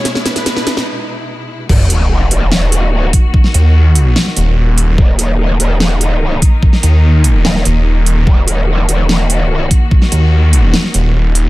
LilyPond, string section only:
\new Staff \with { instrumentName = "String section" } { \time 4/4 \key ees \phrygian \tempo 4 = 146 << { e'1 | ges'1~ | ges'1 | ees'1~ |
ees'1 | ges'1~ | ges'1 | } \\ { <b, gis>1 | <ees bes>1~ | <ees bes>1~ | <ees bes>1~ |
<ees bes>1~ | <ees bes>1~ | <ees bes>1 | } >> }